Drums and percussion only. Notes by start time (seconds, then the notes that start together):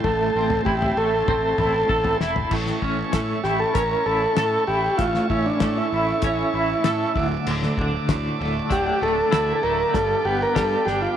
0.04 kick, floor tom
0.50 floor tom
0.66 kick
0.82 floor tom
1.28 kick, floor tom, mid tom
1.58 floor tom, mid tom
1.90 kick
2.04 floor tom
2.21 snare
2.36 floor tom
2.51 kick, crash
2.66 snare
2.82 kick
3.13 kick, snare, closed hi-hat
3.44 snare
3.75 kick, closed hi-hat
4.37 snare, closed hi-hat
4.99 kick, closed hi-hat
5.14 snare
5.30 kick
5.60 kick, snare, closed hi-hat
6.22 kick, closed hi-hat
6.84 snare, closed hi-hat
7.16 kick
7.46 crash
7.62 snare
7.78 kick
8.09 kick, snare, closed hi-hat
8.71 kick, closed hi-hat
9.32 snare, closed hi-hat
9.94 kick, closed hi-hat
10.56 kick, snare, closed hi-hat
10.87 snare